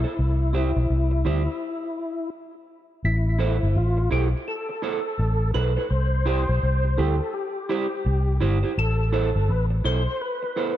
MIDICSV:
0, 0, Header, 1, 5, 480
1, 0, Start_track
1, 0, Key_signature, 0, "minor"
1, 0, Tempo, 715990
1, 123, Time_signature, 4, 2, 24, 8
1, 7220, End_track
2, 0, Start_track
2, 0, Title_t, "Clean electric guitar"
2, 0, Program_c, 0, 27
2, 27, Note_on_c, 0, 72, 59
2, 30, Note_on_c, 0, 69, 53
2, 35, Note_on_c, 0, 64, 45
2, 82, Note_off_c, 0, 72, 0
2, 84, Note_off_c, 0, 69, 0
2, 86, Note_off_c, 0, 64, 0
2, 356, Note_on_c, 0, 64, 91
2, 362, Note_on_c, 0, 67, 91
2, 366, Note_on_c, 0, 72, 88
2, 469, Note_off_c, 0, 64, 0
2, 472, Note_off_c, 0, 67, 0
2, 474, Note_off_c, 0, 72, 0
2, 837, Note_on_c, 0, 64, 85
2, 841, Note_on_c, 0, 67, 86
2, 846, Note_on_c, 0, 72, 96
2, 949, Note_off_c, 0, 64, 0
2, 951, Note_off_c, 0, 67, 0
2, 954, Note_off_c, 0, 72, 0
2, 2270, Note_on_c, 0, 64, 94
2, 2274, Note_on_c, 0, 69, 93
2, 2279, Note_on_c, 0, 72, 112
2, 2385, Note_off_c, 0, 64, 0
2, 2387, Note_off_c, 0, 69, 0
2, 2390, Note_off_c, 0, 72, 0
2, 2753, Note_on_c, 0, 64, 90
2, 2758, Note_on_c, 0, 69, 88
2, 2762, Note_on_c, 0, 72, 90
2, 2867, Note_off_c, 0, 64, 0
2, 2869, Note_off_c, 0, 69, 0
2, 2871, Note_off_c, 0, 72, 0
2, 3232, Note_on_c, 0, 64, 83
2, 3238, Note_on_c, 0, 69, 100
2, 3241, Note_on_c, 0, 72, 94
2, 3346, Note_off_c, 0, 64, 0
2, 3349, Note_off_c, 0, 69, 0
2, 3351, Note_off_c, 0, 72, 0
2, 3714, Note_on_c, 0, 64, 80
2, 3722, Note_on_c, 0, 69, 92
2, 3724, Note_on_c, 0, 72, 97
2, 3827, Note_off_c, 0, 64, 0
2, 3831, Note_off_c, 0, 69, 0
2, 3832, Note_off_c, 0, 72, 0
2, 3864, Note_on_c, 0, 72, 59
2, 3867, Note_on_c, 0, 69, 57
2, 3871, Note_on_c, 0, 64, 53
2, 3920, Note_off_c, 0, 72, 0
2, 3921, Note_off_c, 0, 69, 0
2, 3923, Note_off_c, 0, 64, 0
2, 4194, Note_on_c, 0, 64, 105
2, 4198, Note_on_c, 0, 67, 110
2, 4202, Note_on_c, 0, 72, 113
2, 4307, Note_off_c, 0, 64, 0
2, 4309, Note_off_c, 0, 67, 0
2, 4311, Note_off_c, 0, 72, 0
2, 4676, Note_on_c, 0, 64, 85
2, 4681, Note_on_c, 0, 67, 97
2, 4684, Note_on_c, 0, 72, 87
2, 4788, Note_off_c, 0, 64, 0
2, 4790, Note_off_c, 0, 67, 0
2, 4792, Note_off_c, 0, 72, 0
2, 5157, Note_on_c, 0, 64, 99
2, 5161, Note_on_c, 0, 67, 113
2, 5165, Note_on_c, 0, 72, 103
2, 5268, Note_off_c, 0, 64, 0
2, 5270, Note_off_c, 0, 67, 0
2, 5272, Note_off_c, 0, 72, 0
2, 5634, Note_on_c, 0, 64, 90
2, 5639, Note_on_c, 0, 67, 93
2, 5641, Note_on_c, 0, 72, 108
2, 5747, Note_off_c, 0, 64, 0
2, 5749, Note_off_c, 0, 67, 0
2, 5750, Note_off_c, 0, 72, 0
2, 5785, Note_on_c, 0, 72, 68
2, 5790, Note_on_c, 0, 67, 59
2, 5793, Note_on_c, 0, 64, 52
2, 5840, Note_off_c, 0, 72, 0
2, 5842, Note_off_c, 0, 67, 0
2, 5844, Note_off_c, 0, 64, 0
2, 6116, Note_on_c, 0, 64, 97
2, 6119, Note_on_c, 0, 69, 106
2, 6124, Note_on_c, 0, 72, 115
2, 6227, Note_off_c, 0, 64, 0
2, 6229, Note_off_c, 0, 69, 0
2, 6232, Note_off_c, 0, 72, 0
2, 6599, Note_on_c, 0, 64, 94
2, 6604, Note_on_c, 0, 69, 101
2, 6608, Note_on_c, 0, 72, 105
2, 6709, Note_off_c, 0, 64, 0
2, 6711, Note_off_c, 0, 69, 0
2, 6713, Note_off_c, 0, 72, 0
2, 7081, Note_on_c, 0, 64, 93
2, 7084, Note_on_c, 0, 69, 98
2, 7088, Note_on_c, 0, 72, 105
2, 7190, Note_off_c, 0, 64, 0
2, 7192, Note_off_c, 0, 69, 0
2, 7194, Note_off_c, 0, 72, 0
2, 7220, End_track
3, 0, Start_track
3, 0, Title_t, "Tonewheel organ"
3, 0, Program_c, 1, 16
3, 0, Note_on_c, 1, 64, 96
3, 1541, Note_off_c, 1, 64, 0
3, 2046, Note_on_c, 1, 64, 77
3, 2525, Note_on_c, 1, 65, 94
3, 2538, Note_off_c, 1, 64, 0
3, 2747, Note_off_c, 1, 65, 0
3, 2763, Note_on_c, 1, 67, 80
3, 2871, Note_off_c, 1, 67, 0
3, 3002, Note_on_c, 1, 69, 95
3, 3695, Note_off_c, 1, 69, 0
3, 3717, Note_on_c, 1, 71, 102
3, 3956, Note_on_c, 1, 72, 116
3, 3966, Note_off_c, 1, 71, 0
3, 4678, Note_on_c, 1, 69, 88
3, 4700, Note_off_c, 1, 72, 0
3, 4918, Note_on_c, 1, 67, 90
3, 4926, Note_off_c, 1, 69, 0
3, 5612, Note_off_c, 1, 67, 0
3, 5891, Note_on_c, 1, 69, 96
3, 6370, Note_on_c, 1, 71, 122
3, 6380, Note_off_c, 1, 69, 0
3, 6475, Note_off_c, 1, 71, 0
3, 6607, Note_on_c, 1, 72, 101
3, 6848, Note_on_c, 1, 71, 110
3, 6850, Note_off_c, 1, 72, 0
3, 7220, Note_off_c, 1, 71, 0
3, 7220, End_track
4, 0, Start_track
4, 0, Title_t, "Fingered electric bass"
4, 0, Program_c, 2, 33
4, 126, Note_on_c, 2, 36, 97
4, 488, Note_off_c, 2, 36, 0
4, 512, Note_on_c, 2, 35, 75
4, 598, Note_off_c, 2, 35, 0
4, 604, Note_on_c, 2, 36, 90
4, 828, Note_off_c, 2, 36, 0
4, 843, Note_on_c, 2, 38, 85
4, 982, Note_off_c, 2, 38, 0
4, 2042, Note_on_c, 2, 33, 106
4, 2405, Note_off_c, 2, 33, 0
4, 2432, Note_on_c, 2, 31, 88
4, 2517, Note_off_c, 2, 31, 0
4, 2523, Note_on_c, 2, 33, 93
4, 2747, Note_off_c, 2, 33, 0
4, 2763, Note_on_c, 2, 35, 100
4, 2901, Note_off_c, 2, 35, 0
4, 3481, Note_on_c, 2, 33, 109
4, 3705, Note_off_c, 2, 33, 0
4, 3723, Note_on_c, 2, 35, 98
4, 3861, Note_off_c, 2, 35, 0
4, 3959, Note_on_c, 2, 36, 103
4, 4323, Note_off_c, 2, 36, 0
4, 4352, Note_on_c, 2, 35, 91
4, 4436, Note_off_c, 2, 35, 0
4, 4446, Note_on_c, 2, 36, 87
4, 4668, Note_off_c, 2, 36, 0
4, 4684, Note_on_c, 2, 38, 95
4, 4821, Note_off_c, 2, 38, 0
4, 5404, Note_on_c, 2, 36, 108
4, 5627, Note_off_c, 2, 36, 0
4, 5644, Note_on_c, 2, 31, 92
4, 5781, Note_off_c, 2, 31, 0
4, 5884, Note_on_c, 2, 33, 100
4, 6245, Note_off_c, 2, 33, 0
4, 6272, Note_on_c, 2, 31, 85
4, 6356, Note_off_c, 2, 31, 0
4, 6363, Note_on_c, 2, 33, 103
4, 6586, Note_off_c, 2, 33, 0
4, 6604, Note_on_c, 2, 35, 102
4, 6741, Note_off_c, 2, 35, 0
4, 7220, End_track
5, 0, Start_track
5, 0, Title_t, "Muted clean electric guitar strokes"
5, 746, Note_on_c, 9, 29, 45
5, 813, Note_off_c, 9, 29, 0
5, 2662, Note_on_c, 9, 29, 61
5, 2729, Note_off_c, 9, 29, 0
5, 3145, Note_on_c, 9, 29, 46
5, 3212, Note_off_c, 9, 29, 0
5, 4586, Note_on_c, 9, 29, 49
5, 4653, Note_off_c, 9, 29, 0
5, 6506, Note_on_c, 9, 29, 60
5, 6573, Note_off_c, 9, 29, 0
5, 6989, Note_on_c, 9, 29, 52
5, 7056, Note_off_c, 9, 29, 0
5, 7220, End_track
0, 0, End_of_file